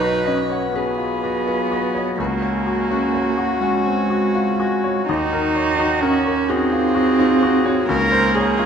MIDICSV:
0, 0, Header, 1, 5, 480
1, 0, Start_track
1, 0, Tempo, 961538
1, 1092, Time_signature, 6, 3, 24, 8
1, 2535, Tempo, 933126
1, 4375, End_track
2, 0, Start_track
2, 0, Title_t, "Harp"
2, 0, Program_c, 0, 46
2, 0, Note_on_c, 0, 83, 43
2, 12, Note_on_c, 0, 71, 67
2, 132, Note_on_c, 0, 75, 43
2, 257, Note_on_c, 0, 78, 45
2, 369, Note_off_c, 0, 71, 0
2, 375, Note_on_c, 0, 71, 67
2, 489, Note_off_c, 0, 83, 0
2, 495, Note_on_c, 0, 83, 48
2, 610, Note_off_c, 0, 83, 0
2, 616, Note_on_c, 0, 83, 47
2, 730, Note_off_c, 0, 71, 0
2, 736, Note_on_c, 0, 71, 68
2, 850, Note_off_c, 0, 83, 0
2, 856, Note_on_c, 0, 83, 49
2, 976, Note_off_c, 0, 75, 0
2, 982, Note_on_c, 0, 75, 48
2, 1099, Note_on_c, 0, 66, 63
2, 1112, Note_off_c, 0, 71, 0
2, 1112, Note_off_c, 0, 83, 0
2, 1116, Note_off_c, 0, 75, 0
2, 1220, Note_on_c, 0, 80, 52
2, 1327, Note_off_c, 0, 80, 0
2, 1333, Note_on_c, 0, 80, 47
2, 1448, Note_off_c, 0, 66, 0
2, 1454, Note_on_c, 0, 66, 77
2, 1679, Note_off_c, 0, 78, 0
2, 1685, Note_on_c, 0, 78, 49
2, 1798, Note_off_c, 0, 66, 0
2, 1804, Note_on_c, 0, 66, 71
2, 1919, Note_off_c, 0, 80, 0
2, 1925, Note_on_c, 0, 80, 53
2, 2040, Note_off_c, 0, 80, 0
2, 2046, Note_on_c, 0, 80, 48
2, 2162, Note_off_c, 0, 66, 0
2, 2168, Note_on_c, 0, 66, 70
2, 2288, Note_off_c, 0, 80, 0
2, 2294, Note_on_c, 0, 80, 51
2, 2538, Note_on_c, 0, 63, 73
2, 2556, Note_off_c, 0, 80, 0
2, 2896, Note_off_c, 0, 63, 0
2, 2902, Note_on_c, 0, 63, 88
2, 3015, Note_off_c, 0, 66, 0
2, 3021, Note_on_c, 0, 66, 51
2, 3142, Note_on_c, 0, 70, 59
2, 3257, Note_off_c, 0, 63, 0
2, 3263, Note_on_c, 0, 63, 84
2, 3617, Note_off_c, 0, 63, 0
2, 3623, Note_on_c, 0, 63, 85
2, 3665, Note_off_c, 0, 78, 0
2, 3858, Note_off_c, 0, 66, 0
2, 3864, Note_on_c, 0, 66, 59
2, 3982, Note_on_c, 0, 61, 89
2, 3997, Note_off_c, 0, 70, 0
2, 3998, Note_off_c, 0, 63, 0
2, 3999, Note_off_c, 0, 66, 0
2, 4103, Note_on_c, 0, 72, 68
2, 4212, Note_off_c, 0, 72, 0
2, 4218, Note_on_c, 0, 72, 67
2, 4328, Note_off_c, 0, 61, 0
2, 4334, Note_on_c, 0, 61, 97
2, 4375, Note_off_c, 0, 61, 0
2, 4375, Note_off_c, 0, 72, 0
2, 4375, End_track
3, 0, Start_track
3, 0, Title_t, "Viola"
3, 0, Program_c, 1, 41
3, 0, Note_on_c, 1, 71, 70
3, 377, Note_on_c, 1, 68, 62
3, 385, Note_off_c, 1, 71, 0
3, 1095, Note_on_c, 1, 66, 60
3, 1103, Note_off_c, 1, 68, 0
3, 2536, Note_off_c, 1, 66, 0
3, 2540, Note_on_c, 1, 66, 73
3, 3259, Note_on_c, 1, 68, 75
3, 3267, Note_off_c, 1, 66, 0
3, 3976, Note_off_c, 1, 68, 0
3, 3980, Note_on_c, 1, 70, 91
3, 4218, Note_on_c, 1, 68, 76
3, 4226, Note_off_c, 1, 70, 0
3, 4375, Note_off_c, 1, 68, 0
3, 4375, End_track
4, 0, Start_track
4, 0, Title_t, "Grand piano"
4, 0, Program_c, 2, 0
4, 0, Control_c, 2, 64, 127
4, 0, Note_on_c, 2, 35, 51
4, 0, Note_on_c, 2, 73, 42
4, 0, Note_on_c, 2, 75, 45
4, 6, Note_on_c, 2, 66, 43
4, 83, Note_off_c, 2, 73, 0
4, 126, Note_off_c, 2, 75, 0
4, 126, Note_on_c, 2, 75, 50
4, 200, Note_off_c, 2, 66, 0
4, 250, Note_on_c, 2, 73, 45
4, 320, Note_off_c, 2, 75, 0
4, 366, Note_on_c, 2, 66, 39
4, 442, Note_off_c, 2, 73, 0
4, 487, Note_on_c, 2, 65, 34
4, 561, Note_off_c, 2, 66, 0
4, 610, Note_off_c, 2, 65, 0
4, 618, Note_on_c, 2, 66, 45
4, 732, Note_on_c, 2, 65, 40
4, 808, Note_off_c, 2, 66, 0
4, 853, Note_off_c, 2, 65, 0
4, 855, Note_on_c, 2, 66, 47
4, 969, Note_on_c, 2, 73, 48
4, 1045, Note_off_c, 2, 66, 0
4, 1069, Note_off_c, 2, 35, 0
4, 1089, Note_on_c, 2, 37, 54
4, 1090, Note_off_c, 2, 73, 0
4, 1101, Control_c, 2, 64, 0
4, 1178, Control_c, 2, 64, 127
4, 1208, Note_on_c, 2, 73, 48
4, 1331, Note_on_c, 2, 66, 43
4, 1399, Note_off_c, 2, 73, 0
4, 1450, Note_on_c, 2, 61, 48
4, 1519, Note_off_c, 2, 66, 0
4, 1570, Note_on_c, 2, 73, 47
4, 1637, Note_off_c, 2, 61, 0
4, 1686, Note_on_c, 2, 66, 49
4, 1757, Note_off_c, 2, 73, 0
4, 1803, Note_on_c, 2, 61, 43
4, 1875, Note_off_c, 2, 66, 0
4, 1931, Note_on_c, 2, 60, 36
4, 1995, Note_off_c, 2, 61, 0
4, 2048, Note_off_c, 2, 60, 0
4, 2048, Note_on_c, 2, 66, 45
4, 2172, Note_on_c, 2, 65, 43
4, 2243, Note_off_c, 2, 66, 0
4, 2293, Note_off_c, 2, 65, 0
4, 2295, Note_on_c, 2, 66, 53
4, 2416, Note_on_c, 2, 73, 55
4, 2488, Note_off_c, 2, 66, 0
4, 2513, Note_off_c, 2, 37, 0
4, 2536, Note_off_c, 2, 73, 0
4, 2542, Note_on_c, 2, 39, 59
4, 2544, Control_c, 2, 64, 0
4, 2617, Control_c, 2, 64, 127
4, 2663, Note_on_c, 2, 70, 51
4, 2781, Note_on_c, 2, 73, 45
4, 2854, Note_off_c, 2, 70, 0
4, 2901, Note_on_c, 2, 66, 52
4, 2973, Note_off_c, 2, 73, 0
4, 3022, Note_on_c, 2, 70, 61
4, 3093, Note_off_c, 2, 66, 0
4, 3140, Note_on_c, 2, 73, 53
4, 3213, Note_off_c, 2, 70, 0
4, 3263, Note_on_c, 2, 66, 53
4, 3331, Note_off_c, 2, 73, 0
4, 3381, Note_on_c, 2, 65, 46
4, 3453, Note_off_c, 2, 66, 0
4, 3497, Note_on_c, 2, 66, 59
4, 3500, Note_off_c, 2, 65, 0
4, 3622, Note_on_c, 2, 65, 52
4, 3689, Note_off_c, 2, 66, 0
4, 3740, Note_off_c, 2, 65, 0
4, 3744, Note_on_c, 2, 66, 62
4, 3861, Note_on_c, 2, 73, 65
4, 3932, Note_off_c, 2, 66, 0
4, 3960, Note_off_c, 2, 39, 0
4, 3979, Note_off_c, 2, 73, 0
4, 3980, Note_on_c, 2, 37, 69
4, 3985, Control_c, 2, 64, 0
4, 4058, Control_c, 2, 64, 127
4, 4100, Note_on_c, 2, 72, 62
4, 4226, Note_on_c, 2, 73, 61
4, 4288, Note_off_c, 2, 72, 0
4, 4343, Note_on_c, 2, 65, 60
4, 4375, Note_off_c, 2, 37, 0
4, 4375, Note_off_c, 2, 65, 0
4, 4375, Note_off_c, 2, 73, 0
4, 4375, End_track
5, 0, Start_track
5, 0, Title_t, "Cello"
5, 0, Program_c, 3, 42
5, 0, Note_on_c, 3, 63, 82
5, 133, Note_on_c, 3, 61, 66
5, 141, Note_off_c, 3, 63, 0
5, 365, Note_off_c, 3, 61, 0
5, 368, Note_on_c, 3, 59, 81
5, 1076, Note_off_c, 3, 59, 0
5, 1091, Note_on_c, 3, 58, 95
5, 1796, Note_on_c, 3, 56, 80
5, 1804, Note_off_c, 3, 58, 0
5, 2527, Note_off_c, 3, 56, 0
5, 2530, Note_on_c, 3, 63, 100
5, 3024, Note_on_c, 3, 61, 91
5, 3032, Note_off_c, 3, 63, 0
5, 3268, Note_on_c, 3, 60, 98
5, 3276, Note_off_c, 3, 61, 0
5, 3978, Note_off_c, 3, 60, 0
5, 3981, Note_on_c, 3, 58, 107
5, 4375, Note_off_c, 3, 58, 0
5, 4375, End_track
0, 0, End_of_file